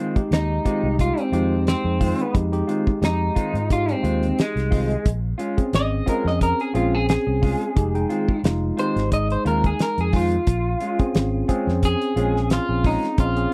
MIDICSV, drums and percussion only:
0, 0, Header, 1, 2, 480
1, 0, Start_track
1, 0, Key_signature, -4, "minor"
1, 0, Tempo, 677201
1, 1662, Time_signature, 4, 2, 24, 8
1, 9594, End_track
2, 0, Start_track
2, 0, Title_t, "Drums"
2, 114, Note_on_c, 9, 36, 78
2, 115, Note_on_c, 9, 42, 40
2, 185, Note_off_c, 9, 36, 0
2, 186, Note_off_c, 9, 42, 0
2, 227, Note_on_c, 9, 42, 79
2, 234, Note_on_c, 9, 38, 108
2, 297, Note_off_c, 9, 42, 0
2, 305, Note_off_c, 9, 38, 0
2, 464, Note_on_c, 9, 36, 66
2, 466, Note_on_c, 9, 42, 55
2, 535, Note_off_c, 9, 36, 0
2, 536, Note_off_c, 9, 42, 0
2, 704, Note_on_c, 9, 36, 73
2, 705, Note_on_c, 9, 42, 78
2, 774, Note_off_c, 9, 36, 0
2, 776, Note_off_c, 9, 42, 0
2, 833, Note_on_c, 9, 42, 35
2, 904, Note_off_c, 9, 42, 0
2, 945, Note_on_c, 9, 42, 58
2, 1016, Note_off_c, 9, 42, 0
2, 1184, Note_on_c, 9, 42, 70
2, 1192, Note_on_c, 9, 38, 97
2, 1255, Note_off_c, 9, 42, 0
2, 1263, Note_off_c, 9, 38, 0
2, 1423, Note_on_c, 9, 36, 82
2, 1424, Note_on_c, 9, 46, 68
2, 1494, Note_off_c, 9, 36, 0
2, 1495, Note_off_c, 9, 46, 0
2, 1555, Note_on_c, 9, 42, 35
2, 1626, Note_off_c, 9, 42, 0
2, 1663, Note_on_c, 9, 36, 111
2, 1664, Note_on_c, 9, 42, 71
2, 1734, Note_off_c, 9, 36, 0
2, 1735, Note_off_c, 9, 42, 0
2, 1794, Note_on_c, 9, 42, 40
2, 1865, Note_off_c, 9, 42, 0
2, 1905, Note_on_c, 9, 42, 57
2, 1976, Note_off_c, 9, 42, 0
2, 2035, Note_on_c, 9, 36, 85
2, 2106, Note_off_c, 9, 36, 0
2, 2145, Note_on_c, 9, 42, 80
2, 2152, Note_on_c, 9, 38, 112
2, 2216, Note_off_c, 9, 42, 0
2, 2223, Note_off_c, 9, 38, 0
2, 2384, Note_on_c, 9, 36, 65
2, 2385, Note_on_c, 9, 42, 56
2, 2455, Note_off_c, 9, 36, 0
2, 2456, Note_off_c, 9, 42, 0
2, 2518, Note_on_c, 9, 42, 41
2, 2589, Note_off_c, 9, 42, 0
2, 2625, Note_on_c, 9, 36, 71
2, 2625, Note_on_c, 9, 42, 85
2, 2696, Note_off_c, 9, 36, 0
2, 2696, Note_off_c, 9, 42, 0
2, 2755, Note_on_c, 9, 42, 42
2, 2825, Note_off_c, 9, 42, 0
2, 2867, Note_on_c, 9, 42, 60
2, 2938, Note_off_c, 9, 42, 0
2, 2997, Note_on_c, 9, 42, 39
2, 3068, Note_off_c, 9, 42, 0
2, 3108, Note_on_c, 9, 42, 77
2, 3116, Note_on_c, 9, 38, 99
2, 3179, Note_off_c, 9, 42, 0
2, 3187, Note_off_c, 9, 38, 0
2, 3238, Note_on_c, 9, 42, 38
2, 3246, Note_on_c, 9, 38, 34
2, 3309, Note_off_c, 9, 42, 0
2, 3317, Note_off_c, 9, 38, 0
2, 3345, Note_on_c, 9, 36, 83
2, 3347, Note_on_c, 9, 46, 74
2, 3416, Note_off_c, 9, 36, 0
2, 3417, Note_off_c, 9, 46, 0
2, 3476, Note_on_c, 9, 42, 37
2, 3547, Note_off_c, 9, 42, 0
2, 3584, Note_on_c, 9, 42, 86
2, 3585, Note_on_c, 9, 36, 106
2, 3655, Note_off_c, 9, 42, 0
2, 3656, Note_off_c, 9, 36, 0
2, 3823, Note_on_c, 9, 42, 58
2, 3894, Note_off_c, 9, 42, 0
2, 3955, Note_on_c, 9, 36, 75
2, 3956, Note_on_c, 9, 42, 37
2, 4026, Note_off_c, 9, 36, 0
2, 4026, Note_off_c, 9, 42, 0
2, 4064, Note_on_c, 9, 42, 86
2, 4072, Note_on_c, 9, 38, 111
2, 4135, Note_off_c, 9, 42, 0
2, 4142, Note_off_c, 9, 38, 0
2, 4305, Note_on_c, 9, 36, 60
2, 4306, Note_on_c, 9, 42, 59
2, 4376, Note_off_c, 9, 36, 0
2, 4377, Note_off_c, 9, 42, 0
2, 4444, Note_on_c, 9, 38, 35
2, 4515, Note_off_c, 9, 38, 0
2, 4544, Note_on_c, 9, 42, 81
2, 4545, Note_on_c, 9, 36, 78
2, 4615, Note_off_c, 9, 42, 0
2, 4616, Note_off_c, 9, 36, 0
2, 4676, Note_on_c, 9, 42, 37
2, 4747, Note_off_c, 9, 42, 0
2, 4784, Note_on_c, 9, 42, 57
2, 4855, Note_off_c, 9, 42, 0
2, 5024, Note_on_c, 9, 42, 77
2, 5031, Note_on_c, 9, 38, 98
2, 5094, Note_off_c, 9, 42, 0
2, 5102, Note_off_c, 9, 38, 0
2, 5265, Note_on_c, 9, 36, 82
2, 5268, Note_on_c, 9, 46, 80
2, 5336, Note_off_c, 9, 36, 0
2, 5338, Note_off_c, 9, 46, 0
2, 5396, Note_on_c, 9, 42, 34
2, 5467, Note_off_c, 9, 42, 0
2, 5504, Note_on_c, 9, 36, 101
2, 5505, Note_on_c, 9, 42, 79
2, 5575, Note_off_c, 9, 36, 0
2, 5576, Note_off_c, 9, 42, 0
2, 5636, Note_on_c, 9, 42, 36
2, 5707, Note_off_c, 9, 42, 0
2, 5743, Note_on_c, 9, 42, 56
2, 5814, Note_off_c, 9, 42, 0
2, 5873, Note_on_c, 9, 36, 75
2, 5944, Note_off_c, 9, 36, 0
2, 5984, Note_on_c, 9, 42, 90
2, 5992, Note_on_c, 9, 38, 122
2, 6055, Note_off_c, 9, 42, 0
2, 6063, Note_off_c, 9, 38, 0
2, 6227, Note_on_c, 9, 42, 59
2, 6298, Note_off_c, 9, 42, 0
2, 6356, Note_on_c, 9, 42, 34
2, 6363, Note_on_c, 9, 38, 32
2, 6426, Note_off_c, 9, 42, 0
2, 6434, Note_off_c, 9, 38, 0
2, 6463, Note_on_c, 9, 36, 73
2, 6463, Note_on_c, 9, 42, 82
2, 6534, Note_off_c, 9, 36, 0
2, 6534, Note_off_c, 9, 42, 0
2, 6594, Note_on_c, 9, 42, 38
2, 6665, Note_off_c, 9, 42, 0
2, 6705, Note_on_c, 9, 42, 61
2, 6775, Note_off_c, 9, 42, 0
2, 6833, Note_on_c, 9, 36, 77
2, 6833, Note_on_c, 9, 42, 36
2, 6904, Note_off_c, 9, 36, 0
2, 6904, Note_off_c, 9, 42, 0
2, 6941, Note_on_c, 9, 42, 79
2, 6949, Note_on_c, 9, 38, 98
2, 7012, Note_off_c, 9, 42, 0
2, 7020, Note_off_c, 9, 38, 0
2, 7073, Note_on_c, 9, 42, 41
2, 7144, Note_off_c, 9, 42, 0
2, 7179, Note_on_c, 9, 46, 78
2, 7182, Note_on_c, 9, 36, 79
2, 7250, Note_off_c, 9, 46, 0
2, 7253, Note_off_c, 9, 36, 0
2, 7312, Note_on_c, 9, 42, 37
2, 7383, Note_off_c, 9, 42, 0
2, 7420, Note_on_c, 9, 42, 84
2, 7423, Note_on_c, 9, 36, 107
2, 7491, Note_off_c, 9, 42, 0
2, 7494, Note_off_c, 9, 36, 0
2, 7658, Note_on_c, 9, 42, 57
2, 7729, Note_off_c, 9, 42, 0
2, 7791, Note_on_c, 9, 42, 42
2, 7794, Note_on_c, 9, 36, 80
2, 7862, Note_off_c, 9, 42, 0
2, 7864, Note_off_c, 9, 36, 0
2, 7900, Note_on_c, 9, 42, 87
2, 7908, Note_on_c, 9, 38, 111
2, 7971, Note_off_c, 9, 42, 0
2, 7979, Note_off_c, 9, 38, 0
2, 8143, Note_on_c, 9, 42, 56
2, 8144, Note_on_c, 9, 36, 61
2, 8214, Note_off_c, 9, 42, 0
2, 8215, Note_off_c, 9, 36, 0
2, 8282, Note_on_c, 9, 38, 33
2, 8353, Note_off_c, 9, 38, 0
2, 8383, Note_on_c, 9, 42, 86
2, 8384, Note_on_c, 9, 36, 70
2, 8454, Note_off_c, 9, 42, 0
2, 8455, Note_off_c, 9, 36, 0
2, 8517, Note_on_c, 9, 42, 38
2, 8588, Note_off_c, 9, 42, 0
2, 8626, Note_on_c, 9, 42, 66
2, 8697, Note_off_c, 9, 42, 0
2, 8764, Note_on_c, 9, 38, 33
2, 8835, Note_off_c, 9, 38, 0
2, 8861, Note_on_c, 9, 42, 77
2, 8869, Note_on_c, 9, 38, 97
2, 8932, Note_off_c, 9, 42, 0
2, 8940, Note_off_c, 9, 38, 0
2, 9103, Note_on_c, 9, 46, 74
2, 9104, Note_on_c, 9, 36, 82
2, 9174, Note_off_c, 9, 46, 0
2, 9175, Note_off_c, 9, 36, 0
2, 9232, Note_on_c, 9, 42, 31
2, 9240, Note_on_c, 9, 38, 30
2, 9303, Note_off_c, 9, 42, 0
2, 9311, Note_off_c, 9, 38, 0
2, 9341, Note_on_c, 9, 42, 75
2, 9344, Note_on_c, 9, 36, 112
2, 9412, Note_off_c, 9, 42, 0
2, 9415, Note_off_c, 9, 36, 0
2, 9474, Note_on_c, 9, 42, 39
2, 9545, Note_off_c, 9, 42, 0
2, 9594, End_track
0, 0, End_of_file